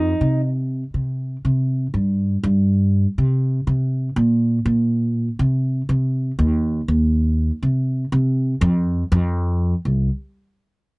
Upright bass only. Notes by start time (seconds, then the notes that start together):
Already playing: F2
0.21 C3
0.94 C3
1.45 C3
1.94 G2
2.43 G2
3.18 C3
3.67 C3
4.16 A#2
4.66 A#2
5.39 C3
5.89 C3
6.39 D#2
6.88 D#2
7.63 C3
8.12 C3
8.61 F2
9.12 F2
9.85 C2